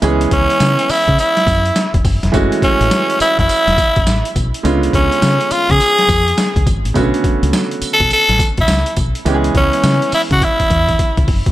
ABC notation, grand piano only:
X:1
M:4/4
L:1/8
Q:"Swing 16ths" 1/4=104
K:C#phr
V:1 name="Grand piano"
[E,G,B,CG]8 | [E,G,A,CF]8 | [D,G,B,C^E]8 | [C,D,A,B,CF]8 |
[E,G,B,C=G^G]8 |]